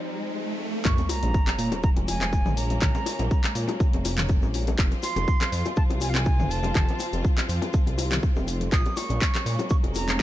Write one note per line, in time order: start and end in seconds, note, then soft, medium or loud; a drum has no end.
0.00 0.81 F3 medium
0.00 0.81 C4 medium
0.00 0.83 D#4 medium
0.00 riser medium
0.84 0.96 A#1 loud
0.84 4.74 G#3 medium
0.84 4.74 A#3 medium
0.84 4.74 C#4 medium
0.84 1.04 C#6 loud
0.84 kick loud
0.84 clap medium
0.84 sub drop medium
0.84 shaker soft
0.98 closed hi-hat soft
0.98 low bongo medium
0.98 shaker soft
1.04 1.12 C#6 medium
1.09 1.83 A#5 loud
1.09 open hi-hat medium
1.09 high bongo loud
1.09 shaker medium
1.22 1.32 A#1 medium
1.22 closed hi-hat medium
1.22 low bongo medium
1.22 shaker soft
1.34 kick loud
1.34 shaker medium
1.46 clap medium
1.46 closed hi-hat soft
1.46 low bongo loud
1.46 shaker soft
1.58 1.70 A#2 medium
1.58 open hi-hat loud
1.58 shaker medium
1.72 closed hi-hat medium
1.72 high bongo loud
1.72 low bongo loud
1.72 shaker soft
1.83 1.90 A#5 loud
1.83 kick loud
1.83 shaker soft
1.96 2.47 F1 medium
1.96 closed hi-hat soft
1.96 high bongo medium
1.96 low bongo medium
1.96 shaker soft
2.08 2.59 G#5 loud
2.08 open hi-hat medium
2.08 high bongo loud
2.08 shaker loud
2.21 clap medium
2.21 closed hi-hat medium
2.21 low bongo medium
2.21 shaker soft
2.33 kick loud
2.33 shaker soft
2.45 2.78 A#1 medium
2.45 mid tom medium
2.45 low bongo loud
2.45 shaker soft
2.57 3.56 A#5 medium
2.57 open hi-hat medium
2.57 shaker medium
2.70 closed hi-hat medium
2.70 low bongo medium
2.70 shaker soft
2.82 2.93 A#1 loud
2.82 kick loud
2.82 clap medium
2.82 mid tom medium
2.82 shaker medium
2.95 closed hi-hat soft
2.95 low bongo loud
2.95 shaker soft
3.06 open hi-hat loud
3.06 high bongo loud
3.06 shaker loud
3.19 3.29 A#1 medium
3.19 closed hi-hat medium
3.19 low bongo loud
3.19 shaker soft
3.31 kick loud
3.31 shaker medium
3.44 clap medium
3.44 closed hi-hat soft
3.44 low bongo medium
3.44 shaker soft
3.55 3.66 A#2 loud
3.55 open hi-hat loud
3.55 shaker loud
3.68 closed hi-hat medium
3.68 high bongo loud
3.68 low bongo loud
3.68 shaker soft
3.80 kick loud
3.80 shaker medium
3.93 4.43 F1 medium
3.93 closed hi-hat soft
3.93 low bongo medium
3.93 shaker soft
4.05 open hi-hat medium
4.05 high bongo loud
4.05 shaker medium
4.18 clap loud
4.18 closed hi-hat medium
4.18 mid tom medium
4.18 low bongo medium
4.18 shaker soft
4.29 kick loud
4.29 shaker medium
4.42 4.75 A#1 medium
4.42 low bongo medium
4.42 shaker soft
4.54 open hi-hat medium
4.54 high bongo medium
4.54 shaker loud
4.67 closed hi-hat medium
4.67 low bongo medium
4.67 shaker soft
4.78 4.89 F1 loud
4.78 8.68 F3 medium
4.78 8.68 C4 medium
4.78 8.68 F4 medium
4.78 kick loud
4.78 clap loud
4.78 shaker medium
4.91 closed hi-hat soft
4.91 low bongo medium
4.91 shaker soft
5.02 5.73 C6 loud
5.02 open hi-hat medium
5.02 high bongo loud
5.02 shaker medium
5.16 5.25 F1 medium
5.16 closed hi-hat medium
5.16 low bongo loud
5.16 shaker soft
5.28 kick loud
5.28 shaker medium
5.40 clap medium
5.40 closed hi-hat soft
5.40 low bongo loud
5.40 shaker soft
5.52 5.63 F2 loud
5.52 open hi-hat medium
5.52 shaker medium
5.65 closed hi-hat medium
5.65 high bongo loud
5.65 low bongo medium
5.65 shaker soft
5.76 5.83 A5 loud
5.76 kick loud
5.76 shaker medium
5.89 6.40 C2 medium
5.89 closed hi-hat soft
5.89 high bongo medium
5.89 low bongo medium
5.89 shaker soft
6.01 6.11 G#5 loud
6.01 open hi-hat medium
6.01 high bongo loud
6.01 shaker loud
6.09 6.18 F5 medium
6.14 6.52 G#5 loud
6.14 clap loud
6.14 closed hi-hat medium
6.14 low bongo loud
6.14 shaker soft
6.25 kick loud
6.25 shaker medium
6.39 6.72 F1 medium
6.39 mid tom medium
6.39 low bongo medium
6.39 shaker soft
6.51 7.24 A5 medium
6.51 open hi-hat medium
6.51 shaker medium
6.63 closed hi-hat medium
6.63 low bongo loud
6.63 shaker soft
6.74 6.86 F1 loud
6.74 kick loud
6.74 clap medium
6.74 mid tom medium
6.74 shaker medium
6.88 closed hi-hat soft
6.88 low bongo medium
6.88 shaker soft
6.99 open hi-hat medium
6.99 high bongo loud
6.99 shaker loud
7.13 7.22 F1 medium
7.13 closed hi-hat medium
7.13 low bongo medium
7.13 shaker soft
7.25 kick loud
7.25 shaker medium
7.36 clap medium
7.36 closed hi-hat soft
7.36 low bongo medium
7.36 shaker soft
7.48 7.60 F2 medium
7.48 open hi-hat medium
7.48 shaker medium
7.62 closed hi-hat medium
7.62 high bongo loud
7.62 low bongo medium
7.62 shaker soft
7.73 kick loud
7.73 shaker medium
7.86 8.20 C2 medium
7.86 closed hi-hat soft
7.86 low bongo medium
7.86 shaker soft
7.98 open hi-hat medium
7.98 high bongo loud
7.98 shaker medium
8.11 clap loud
8.11 closed hi-hat medium
8.11 mid tom medium
8.11 low bongo medium
8.11 shaker soft
8.23 kick loud
8.23 shaker medium
8.36 8.69 F1 medium
8.36 low bongo loud
8.36 shaker soft
8.47 open hi-hat medium
8.47 high bongo medium
8.47 shaker medium
8.61 closed hi-hat medium
8.61 low bongo medium
8.61 shaker soft
8.71 8.83 A#1 loud
8.71 10.22 G#3 medium
8.71 10.22 A#3 medium
8.71 10.22 C#4 medium
8.71 8.98 D#6 loud
8.71 kick loud
8.71 clap medium
8.71 shaker medium
8.85 closed hi-hat soft
8.85 low bongo loud
8.85 shaker soft
8.96 9.70 C#6 loud
8.96 open hi-hat medium
8.96 high bongo loud
8.96 shaker medium
9.09 9.19 A#1 medium
9.09 closed hi-hat medium
9.09 low bongo medium
9.09 shaker soft
9.21 kick loud
9.21 clap loud
9.21 shaker soft
9.34 clap medium
9.34 closed hi-hat soft
9.34 low bongo medium
9.34 shaker soft
9.45 9.57 A#2 medium
9.45 open hi-hat medium
9.45 shaker medium
9.59 closed hi-hat soft
9.59 high bongo loud
9.59 low bongo loud
9.59 shaker soft
9.69 9.76 C#6 loud
9.69 kick loud
9.69 shaker medium
9.83 10.22 F1 medium
9.83 closed hi-hat soft
9.83 high bongo medium
9.83 low bongo medium
9.83 shaker soft
9.94 10.22 A#5 loud
9.94 open hi-hat medium
9.94 high bongo loud
9.94 shaker medium
10.08 clap medium
10.08 closed hi-hat medium
10.08 low bongo medium
10.08 shaker soft